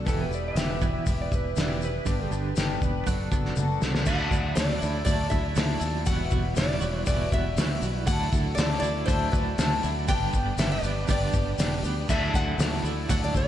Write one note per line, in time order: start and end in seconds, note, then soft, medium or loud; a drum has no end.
0.05 0.27 E1 medium
0.05 0.31 E2 medium
0.05 0.31 B2 medium
0.05 0.31 E3 medium
0.05 0.30 G3 medium
0.05 2.05 B3 medium
0.05 0.30 E4 medium
0.05 2.05 E4 medium
0.05 0.29 G4 medium
0.05 2.05 G4 medium
0.05 2.05 B4 medium
0.05 kick medium
0.05 open hi-hat soft
0.05 shaker medium
0.09 0.20 A4 medium
0.21 0.32 B4 medium
0.29 0.51 E1 medium
0.29 0.55 E2 medium
0.29 0.55 B2 medium
0.29 0.56 E3 soft
0.29 0.56 G3 medium
0.29 0.56 E4 medium
0.29 0.56 G4 medium
0.29 shaker medium
0.35 0.45 D5 medium
0.48 1.19 E5 medium
0.55 0.97 E1 medium
0.55 0.81 E2 medium
0.55 0.82 B2 medium
0.55 0.82 E3 medium
0.55 0.82 G3 medium
0.55 0.81 E4 loud
0.55 0.81 G4 loud
0.55 snare loud
0.55 open hi-hat medium
0.55 shaker medium
0.81 1.05 E2 medium
0.81 1.05 B2 medium
0.81 1.06 E3 soft
0.81 1.07 G3 soft
0.81 1.07 E4 medium
0.81 1.07 G4 medium
0.81 kick medium
0.81 shaker medium
1.06 1.27 E1 medium
1.06 1.29 E2 medium
1.06 1.32 E3 medium
1.06 1.31 G3 medium
1.06 1.31 E4 medium
1.06 1.30 G4 medium
1.06 kick medium
1.06 open hi-hat soft
1.06 shaker medium
1.22 1.33 D5 medium
1.31 1.53 E1 medium
1.31 1.54 E2 medium
1.31 1.54 B2 medium
1.31 1.56 E3 soft
1.31 1.57 G3 medium
1.31 1.57 E4 medium
1.31 1.57 G4 medium
1.31 1.58 B4 medium
1.31 kick medium
1.31 shaker medium
1.56 1.99 E1 medium
1.56 1.82 E2 medium
1.56 1.82 B2 medium
1.56 1.82 E3 medium
1.56 1.82 G3 medium
1.56 1.82 E4 medium
1.56 1.81 G4 medium
1.56 snare loud
1.56 open hi-hat soft
1.56 shaker medium
1.61 1.83 D5 medium
1.81 2.04 E2 medium
1.81 2.04 B2 medium
1.81 2.07 E3 soft
1.81 2.06 G3 medium
1.81 2.07 E4 medium
1.81 2.07 G4 medium
1.81 2.32 B4 loud
1.81 shaker medium
2.06 2.27 G1 medium
2.06 2.32 G2 medium
2.06 2.32 D3 medium
2.06 2.32 G3 medium
2.06 3.06 B3 medium
2.06 2.32 B3 medium
2.06 3.06 D4 medium
2.06 2.31 D4 medium
2.06 3.06 G4 medium
2.06 2.30 G4 medium
2.06 3.06 B4 medium
2.06 kick loud
2.06 open hi-hat soft
2.06 shaker medium
2.31 2.52 G1 medium
2.31 2.55 G2 medium
2.31 2.55 D3 loud
2.31 2.55 G3 soft
2.31 2.56 B3 medium
2.31 2.56 D4 medium
2.31 2.56 G4 medium
2.31 shaker medium
2.56 2.78 G1 medium
2.56 2.81 G2 medium
2.56 2.82 D3 medium
2.56 2.82 G3 medium
2.56 2.81 B3 medium
2.56 2.81 D4 medium
2.56 2.79 G4 medium
2.56 snare loud
2.56 open hi-hat medium
2.56 shaker loud
2.81 3.02 E1 medium
2.81 3.05 G2 medium
2.81 3.05 D3 medium
2.81 3.05 G3 soft
2.81 3.06 B3 soft
2.81 3.06 D4 soft
2.81 3.06 G4 medium
2.81 kick medium
2.81 shaker medium
3.06 3.28 F#1 medium
3.06 3.32 F#3 medium
3.06 3.32 B3 medium
3.06 3.31 D4 medium
3.06 3.98 A4 medium
3.06 3.30 A4 medium
3.06 kick medium
3.06 open hi-hat medium
3.06 shaker medium
3.31 3.53 F#1 medium
3.31 3.55 F#3 medium
3.31 3.56 B3 soft
3.31 3.56 D4 soft
3.31 3.57 A4 medium
3.31 kick medium
3.31 shaker medium
3.45 snare soft
3.56 3.78 F#1 medium
3.56 3.82 F#3 medium
3.56 3.82 B3 medium
3.56 3.82 D4 medium
3.56 3.80 A4 medium
3.56 high tom medium
3.56 shaker medium
3.78 4.04 F#3 medium
3.78 3.98 G3 medium
3.78 4.00 A3 medium
3.78 4.07 A4 medium
3.82 4.03 C2 medium
3.82 4.01 B3 medium
3.82 4.07 B3 soft
3.82 4.07 D4 medium
3.82 snare medium
3.82 shaker medium
3.86 4.03 C4 medium
3.86 4.04 D4 medium
3.91 4.05 E4 medium
3.91 4.07 F4 medium
3.91 snare medium
3.97 4.08 G4 medium
3.97 4.07 A4 medium
4.03 4.30 D2 medium
4.03 4.11 B4 medium
4.03 4.12 C5 medium
4.03 4.55 F#5 loud
4.03 shaker medium
4.07 4.32 D3 medium
4.07 4.32 F#3 medium
4.07 4.32 A3 medium
4.07 4.31 D4 medium
4.07 6.06 D4 medium
4.07 4.30 E4 medium
4.07 6.06 E4 medium
4.07 6.06 F#4 medium
4.07 6.06 A4 medium
4.07 kick loud
4.07 crash loud
4.31 4.56 D2 medium
4.31 4.55 A3 soft
4.31 4.56 D4 medium
4.31 4.56 E4 medium
4.31 kick medium
4.31 shaker medium
4.55 4.81 D2 medium
4.55 4.81 F#3 medium
4.55 4.82 A3 medium
4.55 4.81 D4 medium
4.55 4.80 E4 medium
4.55 5.04 D5 medium
4.55 snare loud
4.55 open hi-hat medium
4.55 shaker medium
4.69 snare soft
4.81 5.05 D2 medium
4.81 5.06 A3 soft
4.81 5.06 D4 soft
4.81 5.06 E4 medium
4.81 shaker medium
5.05 5.31 D2 medium
5.05 5.32 D3 medium
5.05 5.32 F#3 medium
5.05 5.32 A3 medium
5.05 5.32 D4 medium
5.05 5.31 E4 loud
5.05 5.29 D5 loud
5.05 kick loud
5.05 open hi-hat medium
5.05 shaker medium
5.30 5.56 D2 medium
5.30 5.55 A3 soft
5.30 5.56 D4 medium
5.30 5.56 E4 medium
5.30 5.77 E5 medium
5.30 kick medium
5.30 shaker medium
5.56 5.81 D2 loud
5.56 5.82 F#3 medium
5.56 5.82 A3 medium
5.56 5.81 D4 medium
5.56 5.80 E4 medium
5.56 snare loud
5.56 open hi-hat medium
5.56 shaker medium
5.80 6.06 D#2 medium
5.80 6.06 A3 soft
5.80 6.07 D4 medium
5.80 6.06 E4 medium
5.80 shaker medium
6.06 6.31 E1 medium
6.06 6.32 E2 medium
6.06 6.32 B2 medium
6.06 6.31 E3 medium
6.06 6.31 G3 medium
6.06 6.30 B3 medium
6.06 6.30 E4 medium
6.06 8.06 E4 medium
6.06 6.29 F#4 medium
6.06 8.06 F#4 medium
6.06 6.56 F#5 loud
6.06 kick loud
6.06 open hi-hat medium
6.06 shaker medium
6.10 8.07 B4 medium
6.30 6.56 E1 medium
6.30 6.53 E3 medium
6.30 6.54 G3 medium
6.30 6.82 B3 medium
6.30 6.55 E4 soft
6.30 6.56 F#4 medium
6.30 kick medium
6.30 shaker medium
6.54 6.81 E1 medium
6.54 6.80 E3 medium
6.54 6.80 G3 medium
6.54 6.79 E4 medium
6.54 6.78 F#4 medium
6.54 7.05 D5 medium
6.54 snare loud
6.54 open hi-hat medium
6.54 shaker medium
6.71 snare soft
6.79 7.06 E1 loud
6.79 7.06 E3 soft
6.79 7.06 G3 soft
6.79 7.06 E4 soft
6.79 7.06 F#4 soft
6.79 shaker medium
6.83 7.07 B3 medium
7.06 7.31 E1 medium
7.06 7.32 E2 medium
7.06 7.32 B2 medium
7.06 7.32 E3 medium
7.06 7.32 G3 medium
7.06 7.32 B3 loud
7.06 7.31 E4 loud
7.06 7.30 F#4 medium
7.06 7.33 D5 medium
7.06 kick loud
7.06 open hi-hat medium
7.06 shaker medium
7.32 7.56 E1 medium
7.32 7.55 E3 soft
7.32 7.56 G3 medium
7.32 7.56 B3 medium
7.32 7.56 E4 medium
7.32 7.57 F#4 medium
7.32 7.79 E5 medium
7.32 kick medium
7.32 shaker medium
7.56 7.81 D2 medium
7.56 7.82 E3 medium
7.56 7.82 G3 medium
7.56 7.82 B3 medium
7.56 7.82 E4 medium
7.56 7.81 F#4 medium
7.56 snare loud
7.56 open hi-hat medium
7.56 shaker loud
7.82 8.06 B1 medium
7.82 8.07 E3 soft
7.82 8.08 G3 soft
7.82 8.06 B3 medium
7.82 8.08 E4 medium
7.82 8.07 F#4 medium
7.82 shaker medium
8.06 8.31 D2 loud
8.06 8.33 D3 medium
8.06 8.57 F#3 loud
8.06 8.33 A3 medium
8.06 8.32 D4 loud
8.06 10.06 E4 medium
8.06 8.32 E4 medium
8.06 10.06 F#4 medium
8.06 8.31 F#4 medium
8.06 10.06 A4 medium
8.06 10.06 D5 medium
8.06 8.54 F#5 loud
8.06 kick loud
8.06 open hi-hat medium
8.06 shaker loud
8.32 8.56 D2 medium
8.32 8.57 A3 soft
8.32 8.82 D4 medium
8.32 8.58 E4 soft
8.32 8.57 F#4 medium
8.32 kick medium
8.32 shaker medium
8.55 8.82 D2 medium
8.55 8.82 D3 medium
8.55 8.83 A3 medium
8.55 8.79 D5 loud
8.55 snare loud
8.55 open hi-hat medium
8.55 shaker loud
8.59 8.82 E4 medium
8.59 8.81 F#4 medium
8.71 snare soft
8.80 9.07 D2 medium
8.80 9.07 D4 medium
8.80 9.08 E4 medium
8.80 9.07 F#4 medium
8.80 9.07 D5 loud
8.80 shaker medium
8.84 9.07 A3 soft
9.06 9.32 D2 medium
9.06 9.33 D3 medium
9.06 9.56 F#3 loud
9.06 9.33 A3 medium
9.06 9.33 D4 loud
9.06 9.33 E4 medium
9.06 9.32 F#4 medium
9.06 9.31 C5 loud
9.06 kick loud
9.06 open hi-hat medium
9.06 shaker medium
9.32 9.57 D2 medium
9.32 9.58 A3 medium
9.32 9.58 D4 medium
9.32 9.58 E4 medium
9.32 9.58 F#4 medium
9.32 9.79 B4 medium
9.32 kick medium
9.32 shaker medium
9.57 9.82 D2 medium
9.57 9.83 D3 medium
9.57 10.06 F#3 medium
9.57 9.82 A3 medium
9.57 9.85 D4 medium
9.57 9.82 E4 medium
9.57 9.81 F#4 medium
9.57 snare loud
9.57 open hi-hat medium
9.57 shaker loud
9.82 10.08 D2 medium
9.82 10.08 A3 soft
9.82 10.09 D4 medium
9.82 10.08 E4 medium
9.82 10.07 F#4 medium
9.82 shaker medium
10.08 10.32 G1 loud
10.08 10.33 G2 medium
10.08 10.33 D3 medium
10.08 10.33 G3 medium
10.08 10.34 B3 medium
10.08 12.07 D4 medium
10.08 10.33 D4 medium
10.08 10.32 G4 medium
10.08 12.08 G4 medium
10.08 12.08 B4 medium
10.08 12.08 D5 medium
10.08 10.58 G5 loud
10.08 kick loud
10.08 open hi-hat medium
10.08 shaker medium
10.33 10.57 G1 medium
10.33 10.57 G3 medium
10.33 10.58 B3 soft
10.33 10.59 D4 medium
10.33 10.58 G4 medium
10.33 kick medium
10.33 shaker medium
10.58 10.82 G1 medium
10.58 10.83 G3 medium
10.58 10.84 B3 medium
10.58 10.84 D4 medium
10.58 10.83 G4 medium
10.58 10.71 E5 medium
10.58 snare loud
10.58 open hi-hat medium
10.58 shaker loud
10.72 11.06 D5 medium
10.83 11.07 G1 loud
10.83 11.07 G3 soft
10.83 11.07 B3 soft
10.83 11.08 D4 soft
10.83 11.08 G4 medium
10.83 shaker medium
11.07 11.33 G1 loud
11.07 11.33 G2 medium
11.07 11.33 D3 medium
11.07 11.33 G3 medium
11.07 11.32 B3 medium
11.07 11.32 D4 medium
11.07 11.31 G4 medium
11.07 11.81 D5 medium
11.07 kick loud
11.07 open hi-hat medium
11.07 shaker medium
11.32 11.58 G1 medium
11.32 11.57 G3 soft
11.32 11.57 B3 medium
11.32 11.58 D4 medium
11.32 11.58 G4 medium
11.32 kick medium
11.32 shaker medium
11.58 11.83 E1 medium
11.58 11.83 G3 medium
11.58 11.82 B3 medium
11.58 11.82 D4 medium
11.58 11.81 G4 medium
11.58 snare loud
11.58 open hi-hat medium
11.58 shaker loud
11.82 12.08 D2 medium
11.82 12.07 G3 medium
11.82 12.09 B3 medium
11.82 12.07 D4 medium
11.82 12.08 G4 medium
11.82 shaker medium
12.08 12.33 D2 medium
12.08 12.33 D3 medium
12.08 12.33 F#3 medium
12.08 12.34 A3 medium
12.08 12.33 D4 medium
12.08 12.32 E4 medium
12.08 13.48 E4 medium
12.08 13.48 F#4 medium
12.08 13.48 A4 medium
12.08 13.48 D5 medium
12.08 12.33 E5 medium
12.08 kick loud
12.08 crash medium
12.08 shaker medium
12.33 12.58 D2 medium
12.33 12.57 A3 soft
12.33 12.57 D4 medium
12.33 12.58 E4 medium
12.33 12.81 F#5 loud
12.33 kick medium
12.33 shaker medium
12.58 12.83 D2 medium
12.58 12.84 F#3 medium
12.58 12.83 A3 medium
12.58 12.82 D4 medium
12.58 12.81 E4 medium
12.58 snare loud
12.58 open hi-hat medium
12.58 shaker loud
12.73 snare soft
12.82 13.08 D2 medium
12.82 13.08 A3 soft
12.82 13.09 D4 soft
12.82 13.08 E4 medium
12.82 shaker medium
13.09 13.34 D2 medium
13.09 13.34 D3 medium
13.09 13.35 F#3 medium
13.09 13.34 A3 medium
13.09 13.34 D4 medium
13.09 13.32 E4 medium
13.09 13.23 F#5 loud
13.09 kick loud
13.09 open hi-hat medium
13.09 shaker medium
13.24 13.35 D5 medium
13.33 13.48 D2 medium
13.33 13.48 A3 soft
13.33 13.48 D4 soft
13.33 13.48 E4 medium
13.33 13.48 D5 medium
13.33 kick medium
13.33 shaker medium